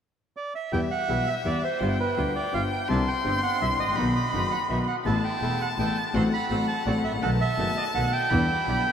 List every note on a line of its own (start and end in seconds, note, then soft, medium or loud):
0.37 0.53 D5 medium
0.55 0.72 E5 medium
0.71 0.88 E2 medium
0.71 0.88 E3 medium
0.71 0.88 G3 medium
0.71 0.88 B3 medium
0.71 0.88 E4 medium
0.71 0.88 G4 medium
0.71 1.82 E5 medium
0.71 0.81 G5 medium
0.91 1.28 F#5 medium
1.08 1.24 B1 soft
1.08 1.24 B1 medium
1.08 1.24 B2 soft
1.08 1.24 E3 soft
1.08 1.24 G3 soft
1.08 1.24 B3 soft
1.08 1.24 E4 soft
1.08 1.24 G4 soft
1.27 1.35 E5 medium
1.44 1.60 E2 soft
1.44 1.60 E2 medium
1.44 1.60 E3 soft
1.44 1.60 G3 soft
1.44 1.60 B3 soft
1.44 1.60 E4 soft
1.44 1.60 G4 soft
1.44 1.63 D5 medium
1.64 1.98 C5 medium
1.80 1.97 G1 medium
1.80 1.97 G2 medium
1.80 1.96 D3 medium
1.80 1.96 G3 medium
1.80 1.96 B3 medium
1.80 1.97 F4 medium
1.80 1.96 G4 medium
1.80 2.17 G5 medium
2.00 2.33 B4 medium
2.17 2.33 D2 medium
2.17 2.33 D3 medium
2.17 2.33 G3 soft
2.17 2.32 B3 soft
2.17 2.33 B3 soft
2.17 2.32 F4 soft
2.17 2.33 F4 soft
2.17 2.32 G4 soft
2.17 2.90 G5 medium
2.35 2.54 D5 medium
2.52 2.68 G1 soft
2.52 2.69 G1 medium
2.52 2.68 G2 soft
2.52 2.68 D3 soft
2.52 2.68 G3 soft
2.52 2.68 B3 soft
2.52 2.68 F4 soft
2.52 2.69 F4 soft
2.52 2.69 G4 soft
2.52 2.62 F5 medium
2.72 2.89 G5 medium
2.88 3.04 C2 medium
2.88 3.05 C2 medium
2.88 3.04 C3 medium
2.88 3.04 D3 medium
2.88 3.04 G3 medium
2.88 3.04 C4 medium
2.88 3.05 D4 medium
2.88 3.04 E4 medium
2.88 3.05 E4 medium
2.88 3.08 A5 medium
2.88 3.98 C6 loud
3.07 3.41 G5 medium
3.24 3.40 G1 soft
3.24 3.41 G1 medium
3.24 3.40 G2 soft
3.24 3.40 D3 soft
3.24 3.40 G3 soft
3.24 3.40 C4 soft
3.24 3.40 D4 soft
3.24 3.40 E4 medium
3.24 3.41 E4 soft
3.43 3.60 F#5 medium
3.61 3.76 C2 medium
3.61 3.77 C2 medium
3.61 3.76 C3 soft
3.61 3.76 D3 soft
3.61 3.76 G3 soft
3.61 3.76 C4 soft
3.61 3.76 D4 soft
3.61 3.76 E4 medium
3.61 3.77 E4 soft
3.61 3.70 E5 medium
3.79 3.97 A1 soft
3.79 4.14 D#5 medium
3.84 3.88 G#1 soft
3.88 3.92 A1 soft
3.92 3.97 A#1 medium
3.92 4.12 B1 medium
3.96 4.12 B1 medium
3.96 4.12 B2 medium
3.96 4.12 D#3 medium
3.96 4.12 F#3 medium
3.96 4.12 B3 medium
3.96 4.12 D#4 medium
3.96 4.12 F#4 medium
3.96 4.87 B5 medium
4.16 4.53 D#5 medium
4.32 4.48 F#1 medium
4.32 4.49 F#1 medium
4.32 4.48 F#2 medium
4.32 4.48 D#3 soft
4.32 4.48 F#3 soft
4.32 4.48 B3 soft
4.32 4.48 D#4 soft
4.32 4.48 F#4 soft
4.32 4.49 F#4 soft
4.51 4.59 F#5 medium
4.69 4.85 B1 soft
4.69 4.85 B1 medium
4.69 4.85 B2 soft
4.69 4.84 D#3 soft
4.69 4.85 F#3 soft
4.69 4.85 B3 soft
4.69 4.85 D#4 soft
4.69 4.85 F#4 soft
4.69 4.78 E5 medium
4.88 4.96 F#5 medium
5.05 5.21 A1 medium
5.05 5.21 A2 medium
5.05 5.21 E3 medium
5.05 5.21 A3 medium
5.05 5.21 B3 medium
5.05 5.21 B3 soft
5.05 5.21 E4 medium
5.05 5.21 A4 medium
5.05 6.16 A5 medium
5.05 5.23 A5 medium
5.24 5.62 G5 medium
5.42 5.57 E1 medium
5.42 5.57 E1 soft
5.42 5.58 E2 soft
5.42 5.57 E3 soft
5.42 5.57 A3 soft
5.42 5.57 B3 soft
5.42 5.57 E4 soft
5.42 5.57 A4 soft
5.61 5.69 F#5 medium
5.78 5.94 A1 medium
5.78 5.94 A1 soft
5.78 5.94 A2 soft
5.78 5.93 E3 soft
5.78 5.94 A3 soft
5.78 5.94 B3 soft
5.78 5.94 E4 soft
5.78 5.94 A4 soft
5.78 5.94 A4 medium
5.78 5.97 G5 medium
5.97 6.05 A5 medium
6.13 6.29 A1 medium
6.13 6.30 A1 medium
6.13 6.29 A2 medium
6.13 6.29 F#3 medium
6.13 6.29 A3 medium
6.13 6.29 C4 medium
6.13 6.29 F#4 medium
6.13 6.29 A4 medium
6.13 6.50 F#5 medium
6.13 6.23 C6 medium
6.33 6.66 B5 medium
6.50 6.65 A1 medium
6.50 6.65 A1 soft
6.50 6.65 A2 medium
6.50 6.65 F#3 soft
6.50 6.66 A3 soft
6.50 6.65 C4 soft
6.50 6.66 C4 soft
6.50 6.65 F#4 soft
6.50 6.66 A4 medium
6.50 6.66 A4 soft
6.50 7.25 F#5 medium
6.68 6.85 A5 medium
6.86 7.01 A1 soft
6.86 7.01 A1 medium
6.86 7.01 A2 soft
6.86 7.01 F#3 soft
6.86 7.01 A3 soft
6.86 7.01 C4 soft
6.86 7.02 C4 soft
6.86 7.01 F#4 soft
6.86 7.01 A4 soft
6.86 7.02 A4 medium
6.86 6.95 D5 medium
7.04 7.22 A1 medium
7.04 7.13 E5 medium
7.09 7.13 G#1 medium
7.09 7.18 A1 soft
7.17 7.22 A#1 medium
7.22 7.37 B1 medium
7.22 7.38 B1 medium
7.22 7.37 B2 medium
7.22 7.37 D#3 medium
7.22 7.37 A3 medium
7.22 7.37 B3 medium
7.22 7.37 D#4 medium
7.22 7.37 F#4 medium
7.22 7.38 A4 medium
7.22 7.31 F#5 medium
7.22 8.32 A5 medium
7.41 7.78 E5 medium
7.58 7.74 F#1 medium
7.58 7.74 F#1 soft
7.58 7.74 F#2 medium
7.58 7.73 D#3 soft
7.58 7.73 A3 soft
7.58 7.74 B3 soft
7.58 7.74 D#4 soft
7.58 7.74 F#4 medium
7.58 7.74 A4 medium
7.77 7.85 D#5 medium
7.94 8.09 B1 soft
7.94 8.10 B1 medium
7.94 8.10 B2 soft
7.94 8.09 D#3 soft
7.94 8.10 A3 soft
7.94 8.10 B3 soft
7.94 8.10 D#4 soft
7.94 8.10 F#4 soft
7.94 8.10 A4 soft
7.94 8.12 F#5 medium
8.12 8.92 G5 medium
8.30 8.46 E2 medium
8.30 8.47 E2 medium
8.30 8.46 D3 medium
8.30 8.46 E3 medium
8.30 8.46 G3 medium
8.30 8.46 B3 medium
8.30 8.46 D4 medium
8.30 8.46 E4 medium
8.30 8.46 G4 medium
8.30 8.92 B5 medium
8.67 8.83 B1 medium
8.67 8.83 B2 medium
8.67 8.82 D3 soft
8.67 8.82 G3 soft
8.67 8.83 B3 soft
8.67 8.83 D4 soft
8.67 8.83 E4 soft
8.67 8.83 G4 soft